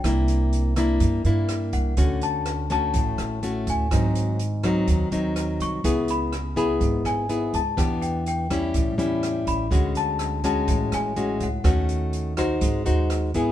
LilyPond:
<<
  \new Staff \with { instrumentName = "Celesta" } { \time 4/4 \key d \lydian \tempo 4 = 124 g''4. r2 fis''8~ | fis''8 a''4 a''2 gis''8~ | gis''2. r8 cis'''8~ | cis'''8 b''4 b''4 gis''4 a''8~ |
a''8 g''8 g''4 r4. b''8~ | b''8 a''4 a''4 gis''4 fis''8~ | fis''2~ fis''8 r4 gis''8 | }
  \new Staff \with { instrumentName = "Nylon-string guitar" } { \time 4/4 \key d \lydian << { <bes d' e'>4. <bes d' e'>4 <bes d' e'>4. | <a cis' fis'>4. <a cis' fis'>4. <a cis' fis'>4 | <fis bis dis'>4 r8 <fis bis dis'>4 <fis bis dis'>4. | <b e' gis'>4 r8 <b e' gis'>4. <b e' gis'>8 r8 |
<b d' g'>4. <g cis' e'>4 <g cis' e'>4. | <gis cis' fis'>4. <gis cis' fis'>4. <gis cis' fis'>8 r8 | <a cis' fis'>4. <dis' fis' c''>4 <dis' fis' bis'>4 <b e' gis'>8 | } \\ { c2 g2 | d2 a,2 | gis,2 dis2 | cis2 gis,2 |
e2 a,2 | d2 a,2 | dis2 gis2 | } >> }
  \new Staff \with { instrumentName = "Upright bass" } { \clef bass \time 4/4 \key d \lydian c,2 g,8 g,4 c,8 | d,2 a,,8 a,,4 d,8 | gis,,2 dis,8 dis,4 bis,,8 | cis,2 gis,,8 gis,,4 cis,8 |
e,2 a,,8 e,4 a,,8 | d,2 a,,8 a,,4 cis,8 | dis,2 gis,,8 dis,4 gis,,8 | }
  \new DrumStaff \with { instrumentName = "Drums" } \drummode { \time 4/4 <hh bd ss>8 hh8 hh8 <hh bd ss>8 <hh bd>8 hh8 <hh ss>8 <hh bd>8 | <hh bd>8 hh8 <hh ss>8 <hh bd>8 <hh bd>8 <hh ss>8 hh8 <hh bd>8 | <hh bd ss>8 hh8 hh8 <hh bd ss>8 <hh bd>8 hh8 <hh ss>8 <hh bd>8 | <hh bd>8 hh8 <hh ss>8 <hh bd>8 <hh bd>8 <hh ss>8 hh8 <hh bd>8 |
<hh bd ss>8 hh8 hh8 <hh bd ss>8 <hh bd>8 hh8 <hh ss>8 <hh bd>8 | <hh bd>8 hh8 <hh ss>8 <hh bd>8 <hh bd>8 <hh ss>8 hh8 <hh bd>8 | <hh bd ss>8 hh8 hh8 <hh bd ss>8 <hh bd>8 hh8 <hh ss>8 <hh bd>8 | }
>>